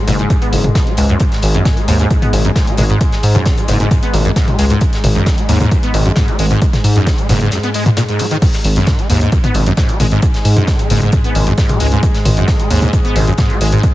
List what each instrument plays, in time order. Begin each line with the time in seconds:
Already playing: synth drone G#2 G#3
0.08 analog synth bass F#1, acid bass G#2, closed hi-hat, open hi-hat, mid tom
0.19 acid bass G#2, closed hi-hat
0.30 acid bass F#2, kick, closed hi-hat
0.42 acid bass B3, closed hi-hat
0.53 analog synth bass F#1, acid bass B2, closed hi-hat, open hi-hat
0.64 acid bass D#3, closed hi-hat, mid tom
0.75 acid bass B2, kick, snare, closed hi-hat
0.87 acid bass G#3, closed hi-hat
0.97 analog synth bass C#2, acid bass G#2, closed hi-hat, open hi-hat
1.09 acid bass F#2, closed hi-hat
1.20 kick, closed hi-hat
1.32 snare, closed hi-hat
1.42 analog synth bass G#1, closed hi-hat, open hi-hat
1.54 acid bass F#2, closed hi-hat
1.65 acid bass D#3, kick, snare, closed hi-hat, mid tom
1.77 acid bass G#3, closed hi-hat
1.88 analog synth bass D#2, acid bass G#2, closed hi-hat, open hi-hat
1.99 acid bass G#2, closed hi-hat
2.10 acid bass F#2, kick, closed hi-hat
2.22 acid bass B3, closed hi-hat, mid tom
2.33 analog synth bass G#1, acid bass G#2, closed hi-hat, open hi-hat
2.45 acid bass F#2, closed hi-hat
2.56 acid bass G#2, kick, snare, closed hi-hat
2.67 acid bass G#3, closed hi-hat
2.77 analog synth bass G#1, acid bass G#3, closed hi-hat, open hi-hat, mid tom
2.90 acid bass G#2, closed hi-hat
3.01 kick, closed hi-hat
3.12 snare, closed hi-hat
3.23 analog synth bass G#2, closed hi-hat, open hi-hat
3.35 acid bass F#2, closed hi-hat, mid tom
3.46 acid bass D#3, kick, snare, closed hi-hat
3.58 acid bass G#3, closed hi-hat
3.68 analog synth bass F#1, acid bass G#2, closed hi-hat, open hi-hat
3.80 acid bass G#2, closed hi-hat
3.91 acid bass F#2, kick, closed hi-hat, mid tom
4.03 acid bass B3, closed hi-hat
4.13 analog synth bass G#1, acid bass G#2, closed hi-hat, open hi-hat
4.25 acid bass F#2, closed hi-hat
4.36 acid bass G#2, kick, snare, closed hi-hat
4.48 acid bass G#3, closed hi-hat, mid tom
4.59 analog synth bass C#2, acid bass G#3, closed hi-hat, open hi-hat
4.70 acid bass G#2, closed hi-hat
4.81 acid bass G#2, kick, closed hi-hat
4.93 snare, closed hi-hat
5.04 analog synth bass G#1, closed hi-hat, open hi-hat, mid tom
5.15 acid bass F#2, closed hi-hat
5.26 acid bass D#3, kick, snare, closed hi-hat
5.38 acid bass G#3, closed hi-hat
5.49 analog synth bass D#2, acid bass G#2, closed hi-hat, open hi-hat
5.60 acid bass G#2, closed hi-hat, mid tom
5.71 acid bass F#2, kick, closed hi-hat
5.83 acid bass B3, closed hi-hat
5.94 analog synth bass G#1, acid bass G#2, closed hi-hat, open hi-hat
6.06 acid bass F#2, closed hi-hat
6.16 acid bass G#2, kick, snare, closed hi-hat, mid tom
6.28 acid bass G#3, closed hi-hat
6.39 analog synth bass G#1, acid bass G#3, closed hi-hat, open hi-hat
6.51 acid bass G#2, closed hi-hat
6.62 acid bass G#2, kick, closed hi-hat
6.73 snare, closed hi-hat, mid tom
6.84 analog synth bass G#2, closed hi-hat, open hi-hat
6.96 acid bass F#2, closed hi-hat
7.07 acid bass D#3, kick, snare, closed hi-hat
7.18 acid bass G#3, closed hi-hat
7.29 analog synth bass F#1, acid bass G#2, closed hi-hat, open hi-hat, mid tom
7.41 acid bass G#2, closed hi-hat
7.51 acid bass F#2, snare, closed hi-hat
7.63 acid bass B3, closed hi-hat
7.74 acid bass G#3, closed hi-hat, open hi-hat
7.86 acid bass G#2, closed hi-hat, mid tom
7.97 acid bass A#2, snare, closed hi-hat
8.09 acid bass G#2, closed hi-hat
8.19 acid bass G#3, closed hi-hat, open hi-hat
8.31 acid bass D#3, closed hi-hat
8.42 acid bass G#2, synth drone G#2 G#3, kick, closed hi-hat, crash
8.53 snare, closed hi-hat
8.64 analog synth bass G#1, closed hi-hat, open hi-hat
8.76 acid bass F#2, closed hi-hat
8.87 acid bass D#3, kick, snare, closed hi-hat, mid tom
8.99 acid bass G#3, closed hi-hat
9.10 analog synth bass D#2, acid bass G#2, closed hi-hat, open hi-hat
9.21 acid bass G#2, closed hi-hat
9.32 kick, closed hi-hat
9.44 acid bass B3, closed hi-hat, mid tom
9.54 analog synth bass G#1, acid bass G#2, closed hi-hat, open hi-hat
9.66 acid bass F#2, closed hi-hat
9.77 acid bass G#2, kick, snare, closed hi-hat
9.89 acid bass G#3, closed hi-hat
10.00 analog synth bass G#1, acid bass G#3, closed hi-hat, open hi-hat, mid tom
10.11 acid bass G#2, closed hi-hat
10.22 acid bass G#2, kick, closed hi-hat
10.34 snare, closed hi-hat
10.45 analog synth bass G#2, closed hi-hat, open hi-hat
10.56 acid bass F#2, closed hi-hat, mid tom
10.67 acid bass D#3, kick, snare, closed hi-hat
10.79 acid bass G#3, closed hi-hat
10.90 analog synth bass F#1, acid bass G#2, closed hi-hat, open hi-hat
11.02 acid bass G#2, closed hi-hat
11.12 kick, closed hi-hat, mid tom
11.24 acid bass B3, closed hi-hat
11.35 analog synth bass G#1, acid bass G#2, closed hi-hat, open hi-hat
11.47 acid bass F#2, closed hi-hat
11.58 acid bass G#2, kick, snare, closed hi-hat
11.69 acid bass G#3, closed hi-hat, mid tom
11.80 analog synth bass C#2, acid bass G#3, closed hi-hat, open hi-hat
11.92 acid bass G#2, closed hi-hat
12.03 acid bass G#2, kick, closed hi-hat
12.14 snare, closed hi-hat
12.25 analog synth bass G#1, closed hi-hat, open hi-hat, mid tom
12.37 acid bass F#2, closed hi-hat
12.48 acid bass D#3, kick, snare, closed hi-hat
12.60 acid bass G#3, closed hi-hat
12.70 analog synth bass D#2, acid bass G#2, closed hi-hat, open hi-hat
12.82 acid bass G#2, closed hi-hat, mid tom
12.93 acid bass F#2, kick, closed hi-hat
13.05 acid bass B3, closed hi-hat
13.16 analog synth bass G#1, acid bass G#2, closed hi-hat, open hi-hat
13.27 acid bass F#2, closed hi-hat
13.38 acid bass G#2, kick, snare, closed hi-hat, mid tom
13.50 acid bass G#3, closed hi-hat
13.61 analog synth bass G#1, acid bass G#3, closed hi-hat, open hi-hat
13.72 acid bass G#2, closed hi-hat
13.83 kick, closed hi-hat